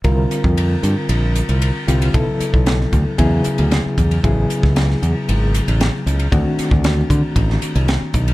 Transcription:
0.04 C2 D3 G3 C4 F4 A#4, kick, ride
0.31 hi-hat pedal, ride
0.44 F2, kick
0.57 ride
0.83 G2, hi-hat pedal, ride
1.09 A#1, ride
1.35 hi-hat pedal, ride
1.49 C2, ride
1.62 ride
1.88 C2 D3 G3 C4 F4 G4, hi-hat pedal, ride
2.02 ride
2.14 B1 C#3 F#3 B3 E4 A4, kick, ride
2.40 muted fingered electric bass stroke, hi-hat pedal, ride
2.53 B1, kick
2.66 snare, ride
2.81 snare
2.93 D2, kick, hi-hat pedal, ride
3.18 E2 C#3 F#3 B3 E4 G#4, kick, ride
3.44 muted fingered electric bass stroke, hi-hat pedal, ride
3.58 D2, ride
3.71 snare, ride
3.86 muted fingered electric bass stroke
3.98 E2, kick, hi-hat pedal, ride
4.11 ride
4.24 A1 C#3 F#3 B3 E4 G#4, kick, ride
4.50 hi-hat pedal, ride
4.63 C#2, kick, snare
4.76 snare, ride
4.90 snare
5.02 E2, hi-hat pedal, ride
5.29 G#1, ride
5.54 hi-hat pedal, ride
5.68 A1, ride
5.80 snare, ride
6.06 C#2, hi-hat pedal, ride
6.19 ride
6.32 D2 D#3 A3 C4 D4 F#4, kick, ride
6.59 muted fingered electric bass stroke, snare, hi-hat pedal, ride
6.71 D2, kick
6.84 snare, ride
7.10 D3, kick, hi-hat pedal, ride
7.36 A1, kick, ride
7.50 snare
7.62 muted fingered electric bass stroke, hi-hat pedal, ride
7.75 C2, ride
7.88 snare, ride
8.02 muted fingered electric bass stroke
8.14 B1, kick, hi-hat pedal, ride
8.28 ride

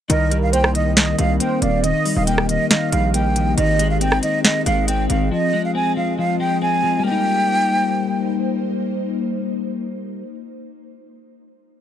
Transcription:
0.10 C2 D#3 C4 A#4 D#5, closed hi-hat
0.31 G3, closed hi-hat
0.42 F5
0.53 A#3 C5 G5, closed hi-hat
0.64 cross-stick
0.74 D#3 D#5, closed hi-hat
0.97 D#3 D#5, snare, closed hi-hat
1.19 C2 G3 F5, closed hi-hat
1.40 A#3 C5 G5, closed hi-hat
1.62 D#1 D#3 D5 F5, closed hi-hat
1.83 D#3 A#3 G4 D#5, closed hi-hat
2.05 G3, open hi-hat
2.16 D#1 F5
2.27 A#3 G5, closed hi-hat
2.38 cross-stick
2.49 D#3 D#5, closed hi-hat
2.70 D#3 D#5 F5, snare, closed hi-hat
2.92 A#1 G3 F5, closed hi-hat
3.14 A#3 G5, closed hi-hat
3.36 D#3, closed hi-hat
3.57 G#1 D#3 C4 G#4 D#5, closed hi-hat
3.79 G#3, closed hi-hat
3.90 F5
4.01 C4 G5, closed hi-hat
4.12 cross-stick
4.23 D#3 D#5, closed hi-hat
4.44 D#3 D#5, snare, closed hi-hat
4.66 G#1 G#3 F5, closed hi-hat
4.88 C4 G5, closed hi-hat
5.10 G#1 D#3 F5, closed hi-hat
5.32 F3 G#3 F4 D#5
5.53 G#3
5.65 F5
5.75 C4 G#5
5.97 F3 F5
6.18 F3 F5
6.40 G#3 G5
6.62 C4 G#5
6.83 F3
6.99 G3 A#3
7.05 A#3 C4 D#4 C5 G5
7.11 D#4

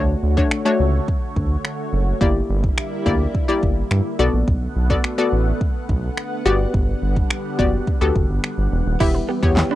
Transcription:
Already playing: D2 D3 A3 D4 F#4 C#5
0.23 D2
0.37 A3 D4 F#4 C#5, kick
0.51 finger snap
0.65 A3 D4 F#4 C#5
0.80 C#2
1.08 kick
1.36 D2, kick
1.65 finger snap
1.93 F#1
2.21 G1 G3 A#3 E4 G4 D5, kick
2.50 G1
2.64 kick
2.78 finger snap
3.06 D2 A#3 E4 G4 D5, kick
3.35 kick
3.48 A#3 E4 G4 D5
3.63 G1, kick
3.91 G2, finger snap
4.19 B1 A3 B3 F#4 A4 D5 F#5
4.33 A#1
4.48 B1, kick
4.76 B1
4.90 B3 F#4 A4 D5, kick
5.04 finger snap
5.18 B3 F#4 A4 D5
5.32 A1
5.61 kick
5.89 B1, kick
6.17 finger snap
6.45 G1 D3 G3 B3 F#4 G4 D5
6.74 G1, kick
7.02 G1
7.16 kick
7.30 finger snap
7.59 F#1 B3 F#4 G4 D5, kick
7.87 kick
8.01 D2 B3 F#4 G4 A4
8.15 F#1, kick
8.30 G1
8.44 finger snap
8.58 G1
8.72 E1
8.86 D#1
9.00 E1 E3 G3 B3 E4 G4 E5, kick, crash
9.14 B4, muted clean electric guitar stroke
9.29 B3 G4
9.43 E2 B3 E4 G4 C#5, kick
9.57 G4, snare, clap
9.71 D4 B5

